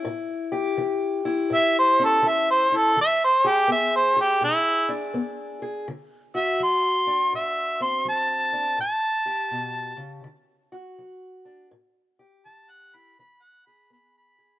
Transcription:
Already playing: steel-string acoustic guitar E4
0.05 steel-string acoustic guitar A2
0.52 steel-string acoustic guitar G4
0.77 steel-string acoustic guitar E3
1.25 steel-string acoustic guitar E4
1.50 steel-string acoustic guitar A2
1.55 harmonica E5
1.79 harmonica C5
2.00 steel-string acoustic guitar C#4
2.05 harmonica A4
2.22 steel-string acoustic guitar E3
2.28 harmonica E5
2.51 harmonica C5
2.72 steel-string acoustic guitar E4
2.76 harmonica A4
2.96 steel-string acoustic guitar E3
3.01 harmonica E5
3.24 harmonica C5
3.44 harmonica G4, steel-string acoustic guitar G#4
3.68 steel-string acoustic guitar B3, harmonica E5
3.96 harmonica C5
4.16 steel-string acoustic guitar G#4
4.21 harmonica G4
4.41 steel-string acoustic guitar B2, harmonica E4
4.89 steel-string acoustic guitar D4
5.14 steel-string acoustic guitar B3
5.62 steel-string acoustic guitar G#4
5.88 steel-string acoustic guitar D3
6.34 steel-string acoustic guitar F#4, harmonica E5
6.60 steel-string acoustic guitar F#3, harmonica C6
7.07 steel-string acoustic guitar D4
7.33 steel-string acoustic guitar A2, harmonica E5
7.80 steel-string acoustic guitar C4, harmonica C6
8.05 steel-string acoustic guitar F#3
8.09 harmonica A5
8.53 steel-string acoustic guitar D4
8.78 steel-string acoustic guitar A2, harmonica A5
9.26 steel-string acoustic guitar G4
9.51 steel-string acoustic guitar B2
9.97 steel-string acoustic guitar C#3
10.24 steel-string acoustic guitar D3
10.72 steel-string acoustic guitar F#4
10.99 steel-string acoustic guitar F#3
11.45 steel-string acoustic guitar D4
11.71 steel-string acoustic guitar A2
12.19 steel-string acoustic guitar G4
12.45 steel-string acoustic guitar E3, harmonica A5
12.70 harmonica F#5
12.94 steel-string acoustic guitar E4, harmonica B5
13.19 steel-string acoustic guitar E3, harmonica B5
13.43 harmonica F#5
13.66 steel-string acoustic guitar G#4, harmonica B5
13.90 steel-string acoustic guitar B3, harmonica B5
14.18 harmonica B5
14.38 steel-string acoustic guitar G#4

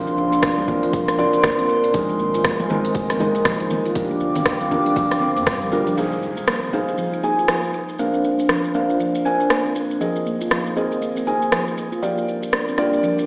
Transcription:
Already playing: felt piano F3 C4 D4 A#4, analog synth pad A#4 D5 F5 C6
0.07 handpan C4, shaker
0.17 analog synth bass A#1, handpan D4, shaker
0.33 closed hi-hat, shaker
0.43 handpan F3, kick, cross-stick, closed hi-hat, shaker
0.58 analog synth bass A#1, high conga, shaker
0.68 felt piano F3 C4 D4 A#4, handpan A#3, kick, low conga, shaker
0.83 handpan F4, closed hi-hat, high conga, shaker
0.93 analog synth bass A#1, handpan F3, kick, closed hi-hat, shaker
1.08 cross-stick, closed hi-hat, shaker
1.19 felt piano F3 C4 D4 D5, shaker
1.33 analog synth bass A#1, closed hi-hat, shaker
1.43 handpan A#3, kick, cross-stick, closed hi-hat, high conga, shaker
1.58 analog synth bass A#1, handpan C4, closed hi-hat, shaker
1.69 handpan D4, shaker
1.84 closed hi-hat, shaker
1.94 handpan F3, felt piano G#3 C4 D#4 A#4, analog synth pad D#5 G#5, kick, closed hi-hat, high conga, shaker
2.09 shaker
2.19 analog synth bass G#1, handpan A#3, shaker
2.34 handpan F4, closed hi-hat, shaker
2.44 handpan F3, kick, cross-stick, closed hi-hat, shaker
2.60 analog synth bass G#1, high conga, shaker
2.70 felt piano G#3 C4 D#4 A#4, low conga, shaker
2.85 closed hi-hat, shaker
2.95 analog synth bass G#1, handpan A#3, kick, closed hi-hat, shaker
3.10 handpan C4, cross-stick, closed hi-hat, shaker
3.20 felt piano G#3 C4 D#4 D#5, handpan D#4, high conga, low conga, shaker
3.35 analog synth bass G#1, closed hi-hat, shaker
3.45 handpan F3, kick, cross-stick, closed hi-hat, shaker
3.60 analog synth bass G#1, closed hi-hat, shaker
3.70 handpan A#3, low conga, shaker
3.85 handpan F4, closed hi-hat, shaker
3.95 handpan F3, felt piano G3 D4 F4 A#4, analog synth pad F5 G5 D6, kick, closed hi-hat, high conga, shaker
4.11 shaker
4.21 analog synth bass G1, shaker
4.36 closed hi-hat, low conga, shaker
4.46 handpan A#3, kick, cross-stick, closed hi-hat, shaker
4.61 analog synth bass G1, handpan C4, closed hi-hat, high conga, shaker
4.71 felt piano G3 D4 F4 A#4, handpan D4, kick, low conga, shaker
4.86 closed hi-hat, high conga, shaker
4.96 analog synth bass G1, handpan F3, kick, closed hi-hat, shaker
5.11 cross-stick, closed hi-hat, shaker
5.21 handpan C4, shaker
5.37 analog synth bass G2, handpan A#3, closed hi-hat, shaker
5.47 handpan G3, kick, cross-stick, closed hi-hat, high conga, shaker
5.62 analog synth bass G1, closed hi-hat, shaker
5.72 felt piano G3 D4 F4 A#4, shaker
5.87 handpan F3, closed hi-hat, shaker
5.97 handpan F3, analog synth pad D#4 F4 G#4 C5 F5, felt piano D#4 G#4 C5 F5, impact, shaker
6.12 shaker
6.23 shaker
6.37 shaker
6.47 handpan A#3, cross-stick, shaker
6.63 handpan C4, shaker
6.73 handpan D#4, felt piano D#4 G#4 C5 F5, shaker
6.88 shaker
6.98 handpan F3, shaker
7.13 shaker
7.23 handpan A#3, felt piano D#4 G#4 C5 G#5, shaker
7.38 handpan F4, shaker
7.48 handpan F3, cross-stick, shaker
7.64 shaker
7.74 shaker
7.89 shaker
7.99 handpan A#3, analog synth pad D4 A#4 C5, felt piano D4 A#4 C5 F5, shaker
8.14 handpan C4, shaker
8.24 handpan D4, shaker
8.39 shaker
8.49 handpan F3, cross-stick, shaker
8.64 shaker
8.75 handpan A#3, felt piano D4 A#4 C5 F5, shaker
8.90 handpan F4, shaker
9.00 handpan F3, shaker
9.15 shaker
9.25 felt piano D4 A#4 C5 G#5, shaker
9.40 shaker
9.50 handpan A#3, cross-stick, shaker
9.65 handpan C4, shaker
9.75 handpan D4, shaker
9.91 shaker
10.01 handpan F3, analog synth pad A#3 D#4 G#4 C5 D#5, felt piano C4 G#4 A#4 D#5, shaker
10.16 shaker
10.26 handpan A#3, shaker
10.41 handpan F4, shaker
10.51 handpan F3, cross-stick, shaker
10.67 shaker
10.77 felt piano C4 G#4 A#4 D#5, shaker
10.92 shaker
11.02 handpan A#3, shaker
11.16 handpan C4, shaker
11.27 felt piano C4 G#4 A#4 G#5, handpan D#4, shaker
11.42 shaker
11.52 handpan F3, cross-stick, shaker
11.67 shaker
11.77 handpan A#3, shaker
11.92 handpan F4, shaker
12.02 handpan F3, analog synth pad G3 D4 F4 A#4 D5, felt piano A#3 F4 G4 D5, shaker
12.18 shaker
12.28 shaker
12.43 shaker
12.53 handpan A#3, cross-stick, shaker
12.68 handpan C4, shaker
12.78 felt piano A#3 F4 G4 D5, handpan D4, cross-stick, shaker
12.93 shaker
13.03 handpan F3, shaker
13.19 shaker

